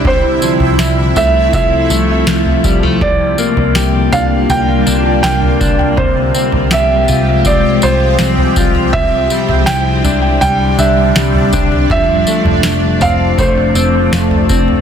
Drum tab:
TB |--x-x-x-x-x-x-x-|--x-x-x-x-x-x-x-|--x-x-x-x-x-x-x-|--x-x-x-x-x-x-x-|
SD |----o-------o---|----o-------o---|----o-------o---|----o-------o---|
FT |o--o--o-o----o-o|o--o--o-o----o-o|o--o--o-o----o-o|o--o--o-o----o-o|
BD |o-------o-----o-|o-------------o-|o-------o-----o-|o-------------o-|

TB |--x-x-x-x-x-x-x-|
SD |----o-------o---|
FT |o--o--o-o----o-o|
BD |o-------o-----o-|